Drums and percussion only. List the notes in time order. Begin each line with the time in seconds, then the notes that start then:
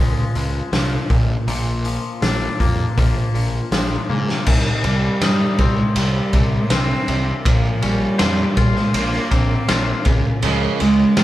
0.35 open hi-hat
0.73 snare, open hi-hat
1.10 kick, open hi-hat
1.48 open hi-hat
1.85 open hi-hat
2.22 snare, open hi-hat
2.60 kick, open hi-hat
2.98 kick, open hi-hat
3.35 open hi-hat
3.72 snare, open hi-hat
4.10 high tom
4.29 snare
4.46 kick, crash
4.84 ride
5.21 snare, ride
5.58 kick, ride
5.96 ride
6.33 kick, ride
6.70 snare, ride
7.08 ride
7.45 kick, ride
7.82 ride
8.19 snare, ride
8.57 kick, ride
8.76 snare
8.94 ride
9.13 snare
9.31 kick, ride
9.69 snare, ride
10.05 kick, ride
10.42 ride
10.80 ride
11.17 snare, ride